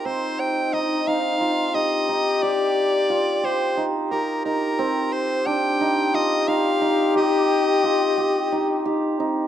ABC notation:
X:1
M:7/8
L:1/8
Q:1/4=89
K:Cm
V:1 name="Soprano saxophone"
c g e f2 e2 | d3 c z B B- | B c g2 e f2 | e6 z |]
V:2 name="French horn"
E4- E G2- | G6 z | G6- G- | G4- G E C |]
V:3 name="Hammered dulcimer"
C2 E E F E E | G2 F G E G E | C2 D E F E E | G2 F G E G E |]